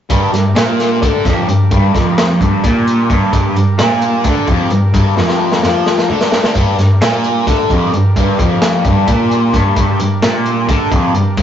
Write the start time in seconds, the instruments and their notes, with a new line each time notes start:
0.10 distorted electric guitar G2, cello G2, transistor combo organ G3 D4 A#4, kick, closed hi-hat
0.33 distorted electric guitar G2, cello G2, snare, closed hi-hat
0.55 distorted electric guitar A#2, cello A#2, snare, closed hi-hat
0.80 snare, closed hi-hat
1.02 cello D2, distorted electric guitar D3, kick, closed hi-hat
1.24 distorted electric guitar F2, cello F2, kick, snare, closed hi-hat
1.47 cello G2, distorted electric guitar G2, closed hi-hat
1.71 distorted electric guitar G2, cello G2, kick, closed hi-hat
1.94 distorted electric guitar F2, cello F2, kick, snare, closed hi-hat
2.18 snare, closed hi-hat
2.40 cello G2, distorted electric guitar G2, kick, closed hi-hat
2.64 cello A#2, distorted electric guitar A#2, kick, closed hi-hat
2.87 closed hi-hat
3.10 cello G2, distorted electric guitar G2, kick, closed hi-hat
3.32 cello G2, distorted electric guitar G2, kick, closed hi-hat
3.55 cello G2, distorted electric guitar G2, closed hi-hat
3.78 cello A#2, distorted electric guitar A#2, snare, closed hi-hat
4.02 closed hi-hat
4.24 cello D2, distorted electric guitar D3, kick, closed hi-hat
4.47 cello F2, distorted electric guitar F2, kick, closed hi-hat
4.71 cello G2, distorted electric guitar G2, closed hi-hat
4.93 cello G2, distorted electric guitar G2, kick, closed hi-hat
5.16 distorted electric guitar F2, cello F2, snare
5.28 snare
5.52 snare
5.63 cello F2, distorted electric guitar F3, snare
5.86 snare
5.98 snare
6.09 cello D2, distorted electric guitar D3
6.21 snare
6.32 snare
6.44 snare
6.55 distorted electric guitar G2, cello G2, kick, closed hi-hat
6.78 cello G2, distorted electric guitar G2, snare, closed hi-hat
7.01 cello A#2, distorted electric guitar A#2, snare, closed hi-hat
7.24 closed hi-hat
7.47 cello D2, distorted electric guitar D3, kick, snare, closed hi-hat
7.70 cello F2, distorted electric guitar F2, kick, closed hi-hat
7.93 cello G2, distorted electric guitar G2, closed hi-hat
8.16 cello G2, distorted electric guitar G2, kick, closed hi-hat
8.38 cello F2, distorted electric guitar F2, kick, closed hi-hat
8.62 snare, closed hi-hat
8.84 cello G2, distorted electric guitar G2, kick, closed hi-hat
9.07 cello A#2, distorted electric guitar A#2, kick, closed hi-hat
9.31 closed hi-hat
9.53 cello G2, distorted electric guitar G2, kick, snare, closed hi-hat
9.76 cello G2, distorted electric guitar G2, kick, closed hi-hat
9.99 cello G2, distorted electric guitar G2, closed hi-hat
10.22 cello A#2, distorted electric guitar A#2, snare, closed hi-hat
10.46 closed hi-hat
10.68 cello D2, distorted electric guitar D3, kick, closed hi-hat
10.91 cello F2, distorted electric guitar F2, kick, closed hi-hat
11.14 distorted electric guitar G2, cello G2, closed hi-hat
11.37 cello G2, distorted electric guitar G2, kick, closed hi-hat